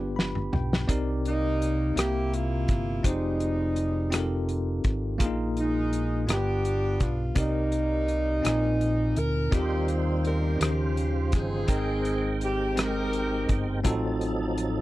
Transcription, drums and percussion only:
0.19 snare medium
0.35 mid tom medium
0.53 floor tom medium
0.73 snare medium
0.89 kick medium
0.89 closed hi-hat medium
1.25 closed hi-hat soft
1.62 closed hi-hat soft
1.97 cross-stick medium
1.97 closed hi-hat medium
2.33 closed hi-hat soft
2.68 kick medium
2.68 closed hi-hat soft
3.04 kick medium
3.04 closed hi-hat medium
3.40 closed hi-hat soft
3.76 closed hi-hat soft
4.12 cross-stick medium
4.12 closed hi-hat medium
4.49 closed hi-hat soft
4.84 kick medium
4.84 closed hi-hat soft
5.20 kick medium
5.20 closed hi-hat medium
5.57 closed hi-hat soft
5.93 closed hi-hat soft
6.29 cross-stick medium
6.29 closed hi-hat medium
6.65 closed hi-hat soft
7.00 kick medium
7.00 closed hi-hat soft
7.36 kick medium
7.36 closed hi-hat medium
7.72 closed hi-hat soft
8.08 closed hi-hat soft
8.45 cross-stick medium
8.45 closed hi-hat medium
8.81 closed hi-hat soft
9.16 closed hi-hat soft
9.52 kick medium
9.52 closed hi-hat medium
9.88 closed hi-hat soft
10.25 closed hi-hat soft
10.61 cross-stick medium
10.61 closed hi-hat medium
10.97 closed hi-hat soft
11.32 kick medium
11.32 closed hi-hat soft
11.68 kick medium
11.68 closed hi-hat medium
12.05 closed hi-hat soft
12.41 closed hi-hat soft
12.77 cross-stick medium
12.77 closed hi-hat medium
13.13 closed hi-hat soft
13.49 kick medium
13.49 closed hi-hat soft
13.85 kick medium
13.85 closed hi-hat medium
14.21 closed hi-hat soft
14.58 closed hi-hat soft

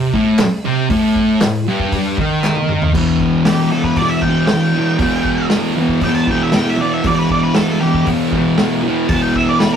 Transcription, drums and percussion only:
0.13 kick medium
0.39 snare loud
0.39 clap medium
0.39 open hi-hat medium
0.90 kick loud
0.90 open hi-hat medium
1.16 kick medium
1.41 snare loud
1.41 clap medium
1.41 open hi-hat medium
1.80 kick medium
1.92 kick loud
1.92 open hi-hat medium
2.18 kick medium
2.43 snare medium
2.43 clap medium
2.56 high tom medium
2.69 mid tom medium
2.82 floor tom medium
2.94 kick loud
2.94 crash loud
3.20 kick medium
3.45 snare loud
3.45 open hi-hat medium
3.84 kick medium
3.96 kick loud
3.96 open hi-hat medium
4.22 kick medium
4.47 snare loud
4.47 open hi-hat medium
4.99 kick loud
4.99 open hi-hat medium
5.25 kick medium
5.50 snare loud
5.50 open hi-hat medium
5.89 kick medium
6.01 kick loud
6.01 open hi-hat medium
6.27 kick medium
6.52 snare loud
6.52 open hi-hat medium
7.04 kick loud
7.04 open hi-hat medium
7.30 kick medium
7.54 snare loud
7.54 open hi-hat medium
7.94 kick medium
8.06 kick medium
8.06 open hi-hat medium
8.32 kick medium
8.58 snare loud
8.58 open hi-hat medium
9.09 kick loud
9.09 open hi-hat medium
9.35 kick medium
9.60 snare loud
9.60 open hi-hat medium

